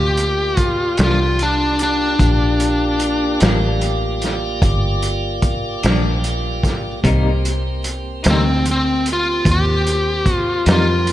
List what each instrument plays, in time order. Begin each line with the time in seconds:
Already playing: fingered electric bass D2, tonewheel organ A#3 F4 G4 D5, lead electric guitar G4
0.17 closed hi-hat
0.57 lead electric guitar F4, kick, closed hi-hat
0.97 fingered electric bass C2, clean electric guitar G2 F3 A#3 D4, snare, closed hi-hat
1.04 lead electric guitar F4
1.39 lead electric guitar D4, closed hi-hat
1.79 lead electric guitar D4, closed hi-hat
2.19 fingered electric bass A#1, tonewheel organ A#3 F4 G4 D5, kick, closed hi-hat
2.60 closed hi-hat
3.00 closed hi-hat
3.40 fingered electric bass A1, clean electric guitar G2 F3 A#3 D4, snare, closed hi-hat
3.81 closed hi-hat
4.22 snare, closed hi-hat
4.62 fingered electric bass G1, kick, closed hi-hat
5.02 closed hi-hat
5.42 kick, closed hi-hat
5.83 fingered electric bass A#1, clean electric guitar G2 F3 A#3 D4, snare, closed hi-hat
6.24 closed hi-hat
6.63 kick, snare, closed hi-hat
7.03 fingered electric bass C2, clean electric guitar C3 G3 A#3 D#4, tonewheel organ A#3 C4 G4 C5, kick, closed hi-hat
7.45 closed hi-hat
7.84 closed hi-hat
8.23 fingered electric bass D2, clean electric guitar C3 G3 A#3 D#4, snare, closed hi-hat
8.30 lead electric guitar C4
8.65 closed hi-hat
8.71 lead electric guitar C4
9.06 closed hi-hat
9.13 lead electric guitar F4
9.45 fingered electric bass D#2, kick, closed hi-hat
9.51 lead electric guitar G4
9.87 closed hi-hat
10.26 kick, closed hi-hat
10.33 lead electric guitar F4
10.65 fingered electric bass F2, clean electric guitar C3 G3 A#3 D#4, snare, closed hi-hat
10.72 lead electric guitar F4
11.07 closed hi-hat